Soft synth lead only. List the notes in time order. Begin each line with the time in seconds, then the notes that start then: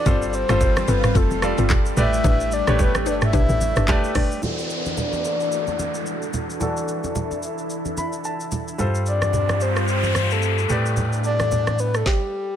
Already playing: D5
0.29 D5
0.34 C5
0.89 B4
1.16 A4
1.99 E5
2.53 D5
2.81 B4
3.08 D5
3.24 E5
4.98 D5
9.08 D5
9.62 C5
9.89 C5
10.32 A4
11.25 D5
11.80 B4
11.96 A4
12.07 G4